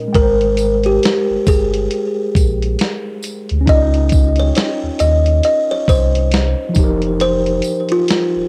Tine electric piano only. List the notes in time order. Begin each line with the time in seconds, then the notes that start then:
Already playing: C#4 D#4 C#5
0.08 G#3
0.13 G5
0.17 A#4
0.22 C5
3.61 C#4
3.66 D#4
3.70 F4
3.75 D5
3.82 D#5
6.69 F3
6.74 D#4
6.79 G4
6.84 A#4